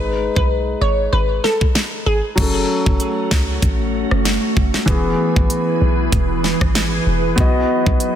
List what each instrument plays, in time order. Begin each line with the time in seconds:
Already playing: 808-style bass G#1, grand piano G#3 D#4 B4
0.36 808-style bass B1, synth pluck B4, kick
0.81 808-style bass G#1, synth pluck C#5
1.13 808-style bass G#1, synth pluck B4
1.44 synth pluck A4, snare
1.61 kick
1.75 snare
2.06 808-style bass G#1, synth pluck G#4
2.36 808-style bass F#1, grand piano F#3 C#4, ambient pad A3 C#4 F#4, kick, closed hi-hat, crash
2.40 grand piano A4
2.86 808-style bass F#1, kick
3.00 closed hi-hat
3.31 808-style bass C#2, kick, snare
3.62 808-style bass A1, kick, closed hi-hat
4.11 808-style bass F#1, cross-stick
4.25 snare, closed hi-hat
4.57 808-style bass F#1, kick
4.74 snare
4.86 808-style bass E1, grand piano E3 B3, ambient pad E3 E4 G#4 B4, kick, closed hi-hat
4.90 grand piano G#4
5.36 808-style bass G#1, kick
5.50 closed hi-hat
5.81 808-style bass B1
6.12 808-style bass E1, kick, closed hi-hat
6.44 snare
6.61 808-style bass G#1, kick, cross-stick
6.75 snare, closed hi-hat
7.07 808-style bass E1
7.36 808-style bass B1, ambient pad F#3 B3 D#4, grand piano B3 F#4, kick, closed hi-hat
7.40 grand piano D#5
7.86 808-style bass B1, kick
8.00 closed hi-hat